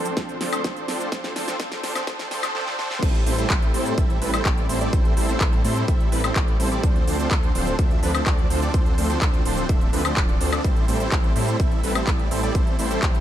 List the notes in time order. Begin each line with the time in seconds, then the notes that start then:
Already playing: D1 F3 C4 D4 A4 C5
0.05 closed hi-hat, shaker
0.17 D2, kick, snare, closed hi-hat, shaker
0.29 closed hi-hat, shaker
0.41 D2 F3 C4 D4 A4 C5, snare, open hi-hat
0.52 F3 C4 D4 A4 C5, closed hi-hat, high woodblock, shaker
0.64 D2 F3 C4 D4 A4 C5, kick, snare, closed hi-hat, shaker
0.76 closed hi-hat, shaker
0.88 D2 F3 C4 D4 A4 C5, snare, open hi-hat
1.00 closed hi-hat, shaker
1.12 D2 F3 C4 C5, kick, snare, closed hi-hat, shaker
1.24 snare, closed hi-hat, shaker
1.36 D2 F3 C4 D4 A4 C5, snare, open hi-hat
1.48 F3 C4 D4 A4 C5, snare, closed hi-hat, shaker
1.60 D2 F3 C4 D4 C5, kick, snare, closed hi-hat, shaker
1.72 snare, closed hi-hat, shaker
1.83 D1 F3 C4 D4 A4 C5, snare, open hi-hat
1.95 F3 C4 D4 A4 C5, snare, closed hi-hat, high woodblock, shaker
2.07 D1 F3 C4 D4 A4 C5, kick, snare, closed hi-hat, shaker
2.19 snare, closed hi-hat, shaker
2.31 D2 F3 C4 D4 A4 C5, snare, open hi-hat
2.43 snare, closed hi-hat, high woodblock, shaker
2.55 F3 C4 D4 A4 C5, snare
2.67 snare
2.79 F3 C4 D4 A4 C5, snare
2.91 snare
3.02 A1 G3 C4 E4 A4 C5, kick, closed hi-hat, crash, shaker
3.15 closed hi-hat
3.26 A1 G3 C4 E4 A4 C5, open hi-hat, shaker
3.38 G3 C4 E4 A4 C5, closed hi-hat, shaker
3.50 A1 G3 C4 E4 A4 C5, kick, clap, closed hi-hat, shaker
3.62 closed hi-hat
3.74 A2 G3 C4 E4 A4 C5, open hi-hat, shaker
3.86 closed hi-hat, shaker
3.98 A1 E4 E5, kick, closed hi-hat, shaker
4.10 closed hi-hat
4.22 A1 G3 C4 E4 A4 B4, open hi-hat, shaker
4.33 G3 C4 E4 A4 C5, closed hi-hat, high woodblock, shaker
4.45 A1 G3 C4 E4 A4, kick, clap, closed hi-hat, shaker
4.58 closed hi-hat
4.69 A1 G3 C4 E4 A4 C5, open hi-hat, shaker
4.81 G3 C4 E4 A4 D5, closed hi-hat, shaker
4.93 A1 G3 C4 E4 C5, kick, closed hi-hat, shaker
5.05 closed hi-hat
5.17 A1 G3 C4 E4 A4 C5, open hi-hat, shaker
5.29 G3 C4 E4 A4 C5, closed hi-hat, shaker
5.40 A1 G3 C4 E4 A4 C5, kick, clap, closed hi-hat, shaker
5.53 closed hi-hat
5.64 A2 G3 C4 E4 A4 C5, open hi-hat, shaker
5.76 closed hi-hat, shaker
5.88 A1 E4 E5, kick, closed hi-hat, shaker
6.00 closed hi-hat
6.12 A1 G3 C4 E4 A4 B4, open hi-hat, shaker
6.24 G3 C4 E4 A4 C5, closed hi-hat, high woodblock, shaker
6.36 A1 G3 C4 E4 A4 D5, kick, clap, closed hi-hat, shaker
6.48 closed hi-hat
6.60 A1 G3 C4 E4 A4 C5, open hi-hat, shaker
6.71 G3 C4 E4 A4 D5, closed hi-hat, shaker
6.83 D2 F3 C4 D4 A4 C5, kick, closed hi-hat, shaker
6.96 closed hi-hat
7.07 D2 F3 C4 D4 A4 C5, open hi-hat, shaker
7.19 F3 C4 D4 A4 C5, closed hi-hat, shaker
7.31 D2, kick, clap, closed hi-hat, shaker
7.43 closed hi-hat
7.55 D1 F3 C4 D4 A4 C5, open hi-hat, shaker
7.67 closed hi-hat, shaker
7.79 D2 F3, kick, closed hi-hat, shaker
7.91 closed hi-hat
8.03 D2 F3 C4 D4 A4 B4, open hi-hat, shaker
8.14 F3 C4 D4 A4 C5, closed hi-hat, high woodblock, shaker
8.26 D2 F3 C4 D4 A4, kick, clap, closed hi-hat, shaker
8.38 closed hi-hat
8.50 D2 F3 C4 D4 A4 C5, open hi-hat, shaker
8.62 F3 C4 D4 A4 D5, closed hi-hat, shaker
8.74 D2 F3 C4 D4 A4 C5, kick, closed hi-hat, shaker
8.86 closed hi-hat
8.98 D2 F3 C4 D4 A4 C5, open hi-hat, shaker
9.10 F3 C4 D4 A4 C5, closed hi-hat, shaker
9.22 D2 F3 D4, kick, clap, closed hi-hat, shaker
9.34 closed hi-hat
9.45 D1 F3 C4 D4 A4 C5, open hi-hat, shaker
9.57 closed hi-hat, shaker
9.69 D1 F3 D4 A4 E5, kick, closed hi-hat, shaker
9.81 closed hi-hat
9.93 D2 F3 C4 D4 A4 B4, open hi-hat, shaker
10.05 F3 C4 D4 A4 C5, closed hi-hat, high woodblock, shaker
10.17 D1 F3 C4 A4, kick, clap, closed hi-hat, shaker
10.29 closed hi-hat
10.41 D2 F3 C4 D4 A4 C5, open hi-hat, shaker
10.53 F3 C4 D4 A4 D5, closed hi-hat, high woodblock, shaker
10.64 A1 G3 C4 E4 A4 C5, kick, closed hi-hat, shaker
10.76 closed hi-hat
10.88 A1 G3 C4 E4 A4 C5, open hi-hat, shaker
11.00 G3 C4 E4 A4 C5, closed hi-hat, shaker
11.12 A1 E4 A4 C5, kick, clap, closed hi-hat, shaker
11.24 closed hi-hat
11.36 A2 G3 C4 E4 A4 C5, open hi-hat, shaker
11.48 closed hi-hat, shaker
11.60 A1 G3 C4 E4 A4 E5, kick, closed hi-hat, shaker
11.72 closed hi-hat
11.83 A1 G3 C4 E4 A4 B4, open hi-hat, shaker
11.95 G3 C4 E4 A4 C5, closed hi-hat, high woodblock, shaker
12.07 A1 G3 C4 E4 A4, kick, clap, closed hi-hat, shaker
12.19 closed hi-hat
12.31 A1 G3 C4 E4 A4 C5, open hi-hat, shaker
12.43 G3 C4 E4 A4 D5, closed hi-hat, shaker
12.55 A1 A4, kick, closed hi-hat, shaker
12.67 closed hi-hat
12.79 A1 G3 C4 E4 A4 C5, open hi-hat, shaker
12.91 G3 C4 E4 A4 C5, closed hi-hat, shaker
13.02 A1 G3 C4 E4, kick, clap, closed hi-hat, shaker
13.15 closed hi-hat